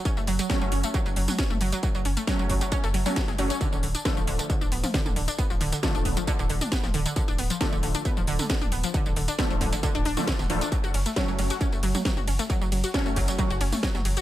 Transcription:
<<
  \new Staff \with { instrumentName = "Synth stab" } { \time 4/4 \key fis \minor \tempo 4 = 135 <fis a cis'>4 <fis a cis'>2.~ | <fis a cis'>4 <fis a cis'>4.~ <fis a cis'>16 <fis a cis'>16 r8 <fis a cis'>16 r16 | r4 <d f a>2.~ | <d f a>4 <d f a>2.~ |
<d f a>4 <d f a>2.~ | <d f a>4 <d f a>4.~ <d f a>16 <d f a>16 r8 <d f a>16 r16 | r4 <fis a cis'>2.~ | <fis a cis'>4 <fis a cis'>2. | }
  \new Staff \with { instrumentName = "Synth arpeggio sound" } { \clef bass \time 4/4 \key fis \minor cis'16 a16 fis16 fis16 fis16 fis16 cis'16 a16 fis16 fis16 fis16 fis16 cis'16 a16 fis16 fis16 | fis16 fis16 cis'16 a16 fis16 fis16 fis16 fis16 cis'16 a16 fis16 fis16 fis16 gis16 fis16 cis'16 | d16 d16 d16 d'16 b16 f16 d16 d16 d16 d'16 b16 f16 d16 d16 d16 d'16 | b16 f16 d16 d16 d16 d'16 b16 f16 d16 d16 d16 d'16 b16 f16 d16 d16 |
d16 d'16 b16 f16 d16 d16 d16 d'16 b16 f16 d16 d16 d16 d'16 b16 f16 | d16 d16 d16 d'16 b16 f16 d16 d16 d16 d'16 d'16 d16 d16 d16 e16 d'16 | fis16 fis'16 cis'16 a16 fis16 fis16 fis16 fis'16 cis'16 a16 fis16 fis16 fis16 fis'16 cis'16 a16 | fis16 fis16 fis16 fis'16 cis'16 a16 fis16 fis16 fis16 fis'16 cis'16 a16 fis16 fis16 fis16 fis'16 | }
  \new Staff \with { instrumentName = "Sub bass" } { \clef bass \time 4/4 \key fis \minor r16 fis,,16 fis,,16 r8 fis,,16 fis,,16 r8 fis,,16 fis,,16 r8 fis,,16 fis,,16 r16 | r16 fis,,16 fis,,16 r8 fis,,16 fis,,16 r8 fis,,16 fis,,16 r8 fis,,16 fis,,16 r16 | r16 d,,16 d,,16 r8 d,,16 d,,16 r8 d,,16 d,,16 r8 d,,16 d,,16 r16 | r16 d,,16 d,,16 r8 d,,16 d,,16 r8 d,,16 d,,16 r8 d,,16 d,,16 r16 |
r16 d,,16 d,,16 r8 d,,16 d,,16 r8 d,,16 d,,16 r8 d,,16 d,,16 r16 | r16 d,,16 d,,16 r8 d,,16 d,,16 r8 d,,16 d,,16 r8 d,,16 d,,16 r16 | r16 fis,,16 fis,,16 r8 fis,,16 fis,,16 r8 fis,,16 fis,,16 r8 fis,,16 fis,,16 r16 | r16 fis,,16 fis,,16 r8 fis,,16 fis,,16 r8 fis,,16 fis,,16 r8 fis,,16 fis,,16 r16 | }
  \new DrumStaff \with { instrumentName = "Drums" } \drummode { \time 4/4 <hh bd tamb>16 tamb16 hho16 <hh tamb>16 <hh bd sn tamb>16 tamb16 hho16 <hh tamb>16 <hh bd tamb>16 tamb16 hho16 <hho tamb toml>16 <hh bd sn tamb>16 <tamb toml>16 hho16 <hh tamb>16 | <hh bd tamb>16 tamb16 hho16 <hh tamb>16 <hh bd sn tamb>16 tamb16 <hho bd>16 <hh tamb>16 <hh bd tamb>16 tamb16 hho16 <hho tamb toml>16 <hh bd sn tamb>16 <sn tamb toml>16 hho16 <hh tamb>16 | <hh bd tamb>16 tamb16 hho16 <hh tamb>16 <hh bd sn tamb>16 tamb16 hho16 <hh tamb>16 <hh bd tamb>16 tamb16 hho16 <hho tamb toml>16 <hh bd sn tamb>16 <tamb toml>16 hho16 <hh tamb>16 | <hh bd tamb>16 tamb16 hho16 <hh tamb>16 <hh bd sn tamb>16 tamb16 <hho bd>16 <hh tamb>16 <hh bd tamb>16 tamb16 hho16 <hho tamb toml>16 <hh bd sn tamb>16 <sn tamb toml>16 hho16 <hh tamb>16 |
<hh bd tamb>16 tamb16 hho16 <hh tamb>16 <hh bd sn tamb>16 tamb16 hho16 <hh tamb>16 <hh bd tamb>16 tamb16 hho16 <hho tamb toml>16 <hh bd sn tamb>16 <tamb toml>16 hho16 <hh tamb>16 | <hh bd tamb>16 tamb16 hho16 <hh tamb>16 <hh bd sn tamb>16 tamb16 <hho bd toml>16 <hh tamb>16 <hh bd tamb>16 tamb16 hho16 <hho tamb toml>16 <hh bd sn tamb>16 <sn tamb toml>16 hho16 <hh tamb>16 | <hh bd tamb>16 tamb16 <hho cymr>16 <hh tamb>16 <hh bd sn tamb>16 tamb16 <hho cymr>16 <hh tamb>16 <hh bd tamb>16 tamb16 <hho cymr>16 <hho tamb toml>16 <hh bd sn tamb>16 <tamb toml>16 <hho cymr>16 <hh tamb>16 | <hh bd tamb>16 tamb16 <hho cymr>16 <hh tamb>16 <hh bd sn tamb>16 tamb16 <hho bd cymr>16 <hh tamb>16 <hh bd tamb>16 tamb16 <hho cymr>16 <hho tamb toml>16 <hh bd sn tamb>16 <sn tamb toml>16 <hho cymr>16 <hh tamb>16 | }
>>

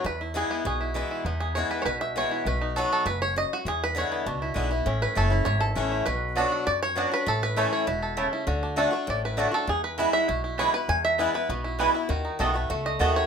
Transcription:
<<
  \new Staff \with { instrumentName = "Mandolin" } { \time 4/4 \key e \mixolydian \tempo 4 = 199 r1 | r1 | r1 | r1 |
r1 | r4 <b fis' d'' fis''>8 r4. <b fis' d'' fis''>8 r8 | r4 <a e' cis'' a''>8 r4. <a e' cis'' a''>8 r8 | r4 <a fis' d'' a''>8 r4. <a fis' d'' a''>8 r8 |
r4 <b e' b' gis''>8 r4. <b e' b' gis''>8 r8 | r4 <b e' b' gis''>8 r4. <b e' b' gis''>8 r8 | r4 <b fis' dis'' a''>8 r4. <b fis' dis'' a''>8 r8 | }
  \new Staff \with { instrumentName = "Five-string banjo" } { \time 4/4 \key e \mixolydian << { b'8 r8 gis'4 gis'4. r8 | r8 gis'8 cis''8 b'16. cis''32 b'8 e''8 cis''4 | b'8 r4 a'8 b'8 cis''8 dis''8 fis'8 | gis'8 b'8 cis''4 r2 |
r8 b'8 a'4 cis''8 a'4. | b'4 r4 d''8 cis''4 b'8 | a'8 b'4 cis''4 r4. | r2 d''8 b'4 a'8 |
gis'8 b'4 e''4 r8 cis''8 b'8 | gis''8 e''4 b'2~ b'8 | r2 r8 dis''4 cis''8 | } \\ { r8 e'4 b4 e'8 b8 e'8 | b4. r2 e'8 | r8 dis'8 a'4. r4. | r4. b8 d'8 e'8 b8 e'8 |
cis'4. e'4. cis'8 e'8 | r4 a'8 fis'4. d'4 | r4 a'4 e'8 a'8 a8 e'8 | fis'8 d'8 a'8 a4. a4 |
r4 e'4 e'8 e'4. | r4 e'4 b8 e'8 b8 e'8 | fis'8 dis'8 a'8 a8 fis'4 a4 | } >> }
  \new Staff \with { instrumentName = "Steel-string acoustic guitar" } { \time 4/4 \key e \mixolydian << { r4 <e gis b e'>4 r4 <e gis b e'>4 | r4 <e gis b e'>4 r4 <e gis b e'>4 | r4 <fis b dis' fis'>4 r2 | r4 <d gis b e'>4 r4 <d gis b e'>8 <b e'>8 |
r4 <e a cis' e'>8 <cis' e'>8 r4 <e a cis' e'>4 | r4 <fis b d' fis'>4 r4 <fis b d' fis'>8 <d' fis'>8 | r4 <e a cis' e'>4 r2 | r4 <d a d' fis'>8 <d' fis'>8 r4 <d a d' fis'>8 <d' fis'>8 |
r4 <e gis b e'>4 r4 <e gis b e'>8 <b e'>8 | r4 <e gis b e'>8 <b e'>8 r4 <e gis b e'>8 <b e'>8 | r4 <dis a b fis'>8 <b fis'>8 r4 <dis a b fis'>4 | } \\ { e,2 b,2 | e,2 b,2 | b,2 gis,4 fis,4 | e,2 b,2 |
a,2 e,2 | b,2 fis,2 | a,2 b,4 cis4 | d2 a,2 |
e,2 b,2 | e,2 b,2 | dis2 a2 | } >> }
  \new Staff \with { instrumentName = "Upright bass" } { \clef bass \time 4/4 \key e \mixolydian e,2 b,,2 | e,2 b,,2 | b,,2 fis,,2 | e,2 cis,4 b,,4 |
a,,4 fis,,4 gis,,4 a,,4 | b,,2 fis,2 | a,,2 e,,2 | d,2 a,,2 |
e,2 b,,2 | e,2 b,,2 | dis,4 b,,4 cis,4 dis,4 | }
>>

